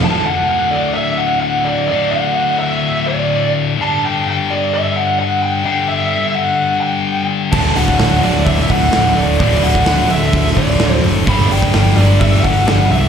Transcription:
<<
  \new Staff \with { instrumentName = "Lead electric guitar" } { \time 4/4 \key d \major \tempo 4 = 128 a''8 fis''8 fis''8 d''8 e''8 fis''8 fis''8 d''8 | d''8 fis''4 e''4 d''4 r8 | a''8 g''8 g''8 d''8 e''8 fis''8 fis''8 g''8 | g''8 e''4 fis''4 g''4 r8 |
a''8 fis''8 fis''8 d''8 e''8 fis''8 fis''8 d''8 | d''8 fis''4 e''4 d''4 r8 | b''8 g''8 g''8 d''8 e''8 fis''8 fis''8 e''8 | }
  \new Staff \with { instrumentName = "Distorted electric guitar" } { \clef bass \time 4/4 \key d \major <d, a, d>1 | <d, a, d>1 | <g, d g>1 | <g, d g>1 |
<d, a, d>1 | <d, a, d>1 | <g, d g>1 | }
  \new Staff \with { instrumentName = "Distorted electric guitar" } { \clef bass \time 4/4 \key d \major r1 | r1 | r1 | r1 |
<d, a, d>4. <d, a, d>2~ <d, a, d>8 | <d, a, d>4. <d, a, d>2~ <d, a, d>8 | <g, d g>4. <g, d g>2~ <g, d g>8 | }
  \new Staff \with { instrumentName = "Distorted electric guitar" } { \clef bass \time 4/4 \key d \major r1 | r1 | r1 | r1 |
<d, a, d>8 <d, a, d>8 <d, a, d>8 <d, a, d>8 <d, a, d>8 <d, a, d>8 <d, a, d>8 <d, a, d>8 | <d, a, d>8 <d, a, d>8 <d, a, d>8 <d, a, d>8 <d, a, d>8 <d, a, d>8 <d, a, d>8 <d, a, d>8 | <g, d g>8 <g, d g>8 <g, d g>8 <g, d g>8 <g, d g>8 <g, d g>8 <g, d g>8 <g, d g>8 | }
  \new Staff \with { instrumentName = "Picked electric bass" } { \clef bass \time 4/4 \key d \major r1 | r1 | r1 | r1 |
d,,8 d,,8 d,,8 d,,8 d,,8 d,,8 d,,8 d,,8 | d,,8 d,,8 d,,8 d,,8 d,,8 d,,8 d,,8 fis,,8 | g,,8 g,,8 g,,8 g,,8 g,,8 g,,8 g,,8 c,8 | }
  \new DrumStaff \with { instrumentName = "Drums" } \drummode { \time 4/4 r4 r4 r4 r4 | r4 r4 r4 r4 | r4 r4 r4 r4 | r4 r4 r4 r4 |
<cymc bd>8 hho16 bd16 <hho sn>8 hho16 sn16 <hho bd>8 <hho bd>8 <hho sn>8 hho8 | <hho bd>8 hho16 bd16 <hho sn>8 hho16 sn16 <hho bd>8 <hho bd>8 <hho sn>8 hho8 | <hho bd>8 hho16 bd16 <hho sn>8 hho8 <hho bd>8 <hho bd>8 <hho sn>8 hho8 | }
>>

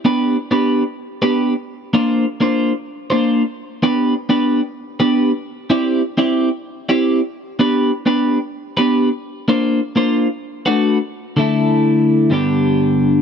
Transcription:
\new Staff \with { instrumentName = "Clean electric guitar" } { \time 4/4 \key g \major \tempo 4 = 127 <b d' g' b'>8 r8 <b d' g' b'>8 r4 <b d' g' b'>8 r4 | <bes d' f' c''>8 r8 <bes d' f' c''>8 r4 <bes d' f' c''>8 r4 | <b d' g' b'>8 r8 <b d' g' b'>8 r4 <b d' g' b'>8 r4 | <c' e' g' d''>8 r8 <c' e' g' d''>8 r4 <c' e' g' d''>8 r4 |
<b d' g' b'>8 r8 <b d' g' b'>8 r4 <b d' g' b'>8 r4 | <bes d' f' c''>8 r8 <bes d' f' c''>8 r4 <a d' fis' b'>8 r4 | <d a e' a'>2 <g, d g b d' g'>2 | }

